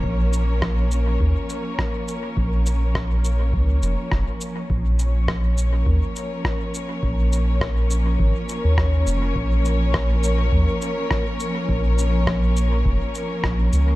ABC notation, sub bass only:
X:1
M:4/4
L:1/16
Q:"Swing 16ths" 1/4=103
K:Bbm
V:1 name="Sub bass" clef=bass
B,,,8 E,, z6 z | B,,,8 D,,2 F,,, z F,,, z3 | B,,,8 E,, z6 z | B,,,8 A,,, z2 E,,3 F,,,2 |
B,,,8 E,, z6 z | B,,,8 F,,, z3 B,,,2 D,,2 |]